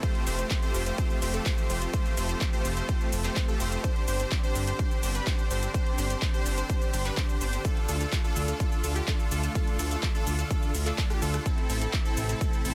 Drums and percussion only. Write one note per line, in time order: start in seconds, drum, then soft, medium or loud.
0.03 kick loud
0.03 closed hi-hat medium
0.03 shaker soft
0.15 closed hi-hat soft
0.27 open hi-hat loud
0.27 shaker medium
0.39 closed hi-hat medium
0.39 shaker soft
0.51 kick loud
0.51 clap loud
0.51 closed hi-hat medium
0.51 shaker soft
0.63 closed hi-hat soft
0.63 shaker soft
0.74 open hi-hat loud
0.74 shaker medium
0.86 closed hi-hat medium
0.86 shaker soft
0.98 kick loud
0.98 closed hi-hat medium
0.98 shaker soft
1.10 closed hi-hat soft
1.10 shaker soft
1.22 open hi-hat loud
1.22 shaker medium
1.34 closed hi-hat medium
1.34 shaker soft
1.46 kick loud
1.46 clap loud
1.46 closed hi-hat medium
1.46 shaker soft
1.58 closed hi-hat soft
1.58 shaker soft
1.70 open hi-hat loud
1.70 shaker medium
1.82 closed hi-hat medium
1.82 shaker soft
1.94 kick loud
1.94 closed hi-hat medium
1.94 shaker soft
2.06 closed hi-hat soft
2.06 shaker soft
2.17 open hi-hat loud
2.17 shaker medium
2.29 closed hi-hat medium
2.29 shaker soft
2.41 kick loud
2.41 clap loud
2.41 closed hi-hat soft
2.41 shaker soft
2.53 closed hi-hat soft
2.53 shaker soft
2.65 open hi-hat loud
2.65 shaker medium
2.77 closed hi-hat medium
2.77 shaker soft
2.89 kick loud
2.89 closed hi-hat soft
2.89 shaker soft
3.01 closed hi-hat soft
3.01 shaker soft
3.13 open hi-hat loud
3.13 shaker medium
3.24 clap soft
3.24 closed hi-hat medium
3.24 shaker soft
3.36 kick loud
3.36 clap loud
3.36 closed hi-hat medium
3.36 shaker soft
3.48 closed hi-hat soft
3.48 shaker soft
3.60 open hi-hat loud
3.60 shaker medium
3.72 closed hi-hat medium
3.72 shaker soft
3.84 kick loud
3.84 closed hi-hat medium
3.84 shaker soft
3.96 closed hi-hat soft
4.08 open hi-hat loud
4.08 shaker medium
4.20 closed hi-hat medium
4.20 shaker soft
4.32 kick loud
4.32 clap loud
4.32 closed hi-hat medium
4.32 shaker soft
4.44 closed hi-hat soft
4.44 shaker soft
4.55 open hi-hat loud
4.55 shaker medium
4.67 closed hi-hat medium
4.67 shaker soft
4.79 kick loud
4.79 closed hi-hat soft
4.79 shaker soft
4.91 closed hi-hat soft
4.91 shaker soft
5.03 open hi-hat loud
5.03 shaker medium
5.15 closed hi-hat medium
5.15 shaker soft
5.27 kick loud
5.27 clap loud
5.27 closed hi-hat medium
5.27 shaker soft
5.39 closed hi-hat soft
5.39 shaker soft
5.51 open hi-hat medium
5.51 shaker medium
5.63 closed hi-hat medium
5.63 shaker soft
5.74 kick loud
5.74 closed hi-hat medium
5.74 shaker soft
5.86 closed hi-hat soft
5.98 open hi-hat loud
5.98 shaker medium
6.10 closed hi-hat medium
6.10 shaker soft
6.22 kick loud
6.22 clap loud
6.22 closed hi-hat medium
6.22 shaker soft
6.34 closed hi-hat soft
6.34 shaker soft
6.46 open hi-hat medium
6.46 shaker medium
6.58 closed hi-hat medium
6.58 shaker soft
6.70 kick loud
6.70 closed hi-hat medium
6.70 shaker soft
6.82 closed hi-hat soft
6.82 shaker soft
6.94 open hi-hat loud
6.94 shaker medium
7.05 clap soft
7.05 closed hi-hat medium
7.05 shaker soft
7.17 kick loud
7.17 clap loud
7.17 closed hi-hat medium
7.17 shaker soft
7.29 closed hi-hat soft
7.29 shaker soft
7.41 open hi-hat medium
7.41 shaker medium
7.53 closed hi-hat medium
7.53 shaker soft
7.65 kick loud
7.65 closed hi-hat medium
7.65 shaker soft
7.77 closed hi-hat soft
7.89 open hi-hat loud
7.89 shaker medium
8.01 closed hi-hat medium
8.01 shaker soft
8.12 kick loud
8.12 clap loud
8.12 closed hi-hat medium
8.12 shaker soft
8.24 closed hi-hat soft
8.24 shaker soft
8.36 open hi-hat medium
8.36 shaker medium
8.48 closed hi-hat medium
8.48 shaker soft
8.60 kick loud
8.60 closed hi-hat medium
8.60 shaker soft
8.72 closed hi-hat soft
8.72 shaker soft
8.84 open hi-hat loud
8.84 shaker medium
8.96 closed hi-hat medium
8.96 shaker soft
9.08 kick loud
9.08 clap loud
9.08 closed hi-hat medium
9.08 shaker soft
9.20 closed hi-hat soft
9.20 shaker soft
9.32 open hi-hat medium
9.32 shaker medium
9.43 closed hi-hat medium
9.43 shaker soft
9.55 kick loud
9.55 closed hi-hat medium
9.55 shaker soft
9.67 closed hi-hat soft
9.79 open hi-hat loud
9.79 shaker medium
9.91 closed hi-hat medium
9.91 shaker soft
10.03 kick loud
10.03 clap loud
10.03 closed hi-hat medium
10.03 shaker soft
10.15 closed hi-hat soft
10.15 shaker soft
10.27 open hi-hat medium
10.27 shaker medium
10.39 closed hi-hat medium
10.39 shaker soft
10.51 kick loud
10.51 closed hi-hat medium
10.51 shaker soft
10.63 closed hi-hat soft
10.63 shaker soft
10.75 open hi-hat loud
10.75 shaker medium
10.86 clap soft
10.86 closed hi-hat medium
10.86 shaker soft
10.98 kick loud
10.98 clap loud
10.98 closed hi-hat medium
10.98 shaker soft
11.10 cross-stick medium
11.10 closed hi-hat soft
11.10 shaker soft
11.22 open hi-hat medium
11.22 shaker medium
11.34 cross-stick medium
11.34 closed hi-hat medium
11.34 shaker soft
11.46 kick loud
11.46 closed hi-hat medium
11.46 shaker soft
11.58 closed hi-hat soft
11.70 open hi-hat loud
11.70 shaker medium
11.82 closed hi-hat medium
11.82 shaker soft
11.93 kick loud
11.93 clap loud
11.93 closed hi-hat medium
11.93 shaker soft
12.05 closed hi-hat soft
12.05 shaker soft
12.17 open hi-hat loud
12.17 shaker medium
12.29 closed hi-hat medium
12.29 shaker soft
12.41 kick loud
12.41 closed hi-hat medium
12.41 shaker soft
12.53 closed hi-hat soft
12.53 shaker soft
12.65 open hi-hat loud
12.65 shaker medium